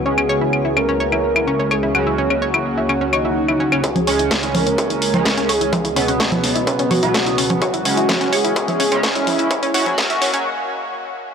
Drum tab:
HH |----------------|----------------|xxoxxxoxxxoxxxox|xxoxxxoxxxoxxxox|
CL |-x--x-x--x-x--x-|x--x-x--x-x--x-x|----------------|----------------|
SD |----------------|----------------|----o-------o---|----o-o-----o---|
CG |----------------|----------------|-O----O----O----|O----O----O----O|
BD |----------------|----------------|o---o---o---o---|o---o---o---o---|

HH |xxoxxxoxxxoxxxox|xxoxxxox--------|
CL |----------------|----------------|
SD |----o-------o---|----o-o---------|
CG |----O----O----O-|---O------------|
BD |o---o---o---o---|o---o-----------|